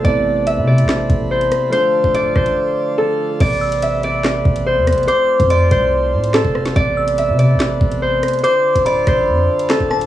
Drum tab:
CC |--------------------------------|--------------------------------|x-------------------------------|--------------------------------|
HH |x-------x-----x-----x-----x-x---|x-------x-----x-----------------|x-----x-x---x---x-----x-----xxxx|x-----x-x---x---------x-x-----x-|
CP |----------------x---------------|--------------------------------|----------------x---------------|------------------------x-------|
SD |----------------o-----------r---|------------r-------------------|----------------o-----------r---|------------------------o---r-o-|
BD |o-------------------o-----------|------o-----o-------------------|o-------------------o-----------|------o-----o-------------o-----|

CC |--------------------------------|--------------------------------|
HH |x-----x-x---x---x-----x-----xxxx|x-----x-x---x---------x-x-----x-|
CP |----------------x---------------|------------------------x-------|
SD |----------------o-----------r---|------------r-----------o---r---|
BD |o-------------------o-----------|------o-----o-------------o-----|